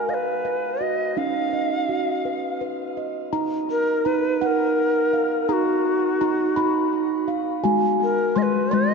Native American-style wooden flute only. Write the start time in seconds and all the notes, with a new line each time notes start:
Already playing: A#4
0.09 D#5
0.14 B4
0.82 D#5
1.18 F5
3.71 A#4
4.06 B4
4.42 B4
4.46 A#4
5.49 F#4 G#4
8.03 A#4
8.38 D#5
8.43 B4
8.74 D#5